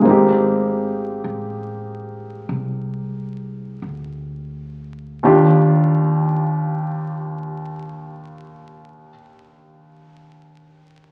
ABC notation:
X:1
M:4/4
L:1/8
Q:"Swing" 1/4=41
K:Eb
V:1 name="Grand piano"
[A,B,CEG]8 | [E,,E,DFG]8 |]
V:2 name="Upright bass" clef=bass
A,,,2 =A,,,2 C,,2 D,,2 | E,,8 |]